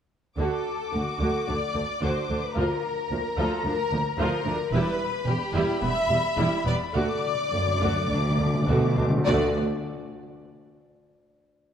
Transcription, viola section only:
0.38 0.64 D3 soft
0.38 0.64 F#4 medium
0.93 1.01 D3 soft
0.93 1.01 A3 soft
1.20 1.46 D3 soft
1.20 1.46 F#4 soft
1.48 1.56 D3 soft
1.48 1.56 D4 soft
1.74 1.83 D3 soft
1.74 1.82 A3 soft
2.02 2.28 D3 soft
2.02 2.28 F#4 medium
2.30 2.38 D3 soft
2.30 2.38 D4 soft
2.56 2.82 F3 soft
2.56 2.82 F4 medium
3.11 3.19 F3 soft
3.11 3.19 A#3 soft
3.38 3.63 F3 medium
3.38 3.63 F4 medium
3.66 3.74 F3 soft
3.66 3.74 D4 soft
3.92 4.00 F3 soft
3.92 4.00 A#3 soft
4.20 4.44 F3 medium
4.20 4.44 F4 medium
4.46 4.54 F3 soft
4.46 4.54 D4 medium
4.73 4.98 G3 medium
4.73 4.98 E4 medium
5.27 5.35 G3 soft
5.55 5.81 G3 medium
5.55 5.81 E4 medium
5.82 5.91 G3 soft
5.82 5.90 B3 medium
6.11 6.19 G3 soft
6.38 6.65 G3 medium
6.38 6.65 E4 medium
6.66 6.75 G3 medium
6.66 6.74 B3 medium
6.95 7.22 A3 medium
6.95 7.22 F#4 medium
7.54 7.62 A3 soft
7.80 8.08 A3 medium
7.80 8.08 F#4 medium
8.10 8.18 A3 soft
8.10 8.18 D4 soft
8.39 8.48 A3 soft
8.69 8.96 A3 medium
8.69 8.96 F#4 medium
8.98 9.06 A3 soft
8.98 9.06 D4 medium
9.27 9.60 A3 medium
9.27 9.60 F#4 medium

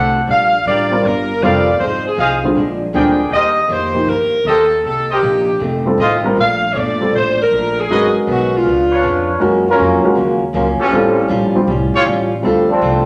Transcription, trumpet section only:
0.00 0.26 A4 medium
0.00 0.26 C5 medium
0.00 0.26 D5 medium
0.00 0.26 F#5 medium
0.67 0.84 G4 medium
0.67 0.84 A#4 medium
0.67 0.84 D5 medium
0.67 0.84 F5 medium
1.43 1.81 G4 medium
1.43 1.81 A#4 medium
1.43 1.81 D5 medium
1.43 1.81 F5 medium
2.19 2.36 G#4 medium
2.19 2.36 C5 medium
2.19 2.36 D#5 medium
2.19 2.36 F5 medium
2.95 3.33 G#4 medium
2.95 3.32 A#4 medium
2.95 3.33 D5 medium
2.95 3.33 G5 medium
3.33 3.50 G4 medium
3.33 3.50 A#4 medium
3.33 3.50 C5 medium
3.33 3.50 D#5 medium
4.47 4.64 G4 medium
4.47 4.64 A#4 medium
4.47 4.64 C5 medium
4.47 4.64 D#5 medium
5.10 5.19 G4 medium
5.10 5.19 A#4 medium
5.10 5.19 C5 medium
5.10 5.19 D#5 medium
6.00 6.17 F4 medium
6.00 6.17 A4 medium
6.00 6.17 C5 medium
6.00 6.17 D#5 medium
7.90 8.07 F#4 medium
7.90 8.07 G#4 medium
7.90 8.07 B4 medium
7.90 8.07 D#5 medium
8.91 9.39 D4 medium
8.91 9.39 F4 medium
8.91 9.39 B4 medium
8.91 9.39 C#5 medium
10.80 11.28 C#4 medium
10.80 11.28 F4 medium
10.80 11.28 G4 medium
10.80 11.28 A4 medium
11.95 12.03 F4 medium
11.95 12.03 G4 medium
11.95 12.03 A4 medium
11.95 12.03 C#5 medium

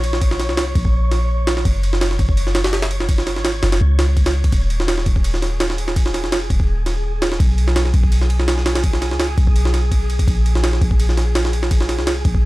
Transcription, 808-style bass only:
0.00 0.51 A#1 loud
0.49 0.74 C2 loud
0.75 1.64 A#1 loud
1.65 2.18 F#1 loud
2.19 3.38 F#1 medium
3.37 3.62 G#1 medium
3.63 3.80 F#1 medium
3.81 4.52 C#2 loud
4.53 5.05 D#1 loud
5.06 6.26 D#1 loud
6.24 6.49 F1 loud
6.50 7.39 D#1 medium
7.40 7.93 B1 loud
7.94 9.13 B1 medium
9.11 9.37 C#2 loud
9.38 10.26 B1 medium
10.28 10.80 A#1 loud
10.81 12.00 A#1 medium
11.99 12.24 C2 loud
12.25 12.45 A#1 loud

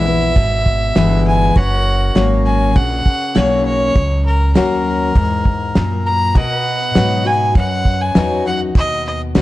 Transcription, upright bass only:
0.00 0.34 A#1 medium
0.36 0.94 G#1 loud
0.96 1.54 G1 medium
1.56 2.14 F#1 medium
2.16 2.74 G#1 medium
2.76 3.04 A#1 loud
3.06 muted upright bass stroke soft
3.36 3.94 B1 loud
3.96 4.54 C#2 medium
4.56 5.14 D#2 medium
5.16 5.74 E2 medium
5.76 6.34 F#2 loud
6.36 6.94 B2 medium
6.96 7.54 G#2 medium
7.55 8.13 F#2 loud
8.16 8.74 E2 medium
8.76 9.33 D#2 medium
9.35 9.42 C#2 medium

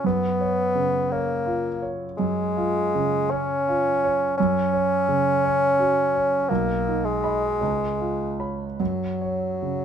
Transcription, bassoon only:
0.06 1.13 B3 medium
1.11 1.90 A#3 medium
2.18 3.32 G#3 medium
3.30 4.37 C#4 medium
4.38 6.50 C#4 medium
6.49 7.07 A#3 medium
7.05 8.49 G#3 medium
8.80 9.85 F#3 medium

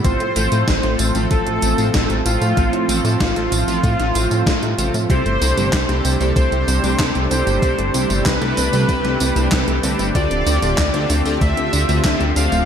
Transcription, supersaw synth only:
0.05 1.18 C5 loud
1.31 2.13 A4 loud
2.26 3.08 F4 loud
3.21 4.97 F4 loud
5.10 6.24 C5 loud
6.36 7.18 C5 loud
7.31 8.13 C5 loud
8.26 10.03 B4 loud
10.15 11.29 D5 loud
11.41 12.23 E5 loud
12.36 12.65 F5 loud

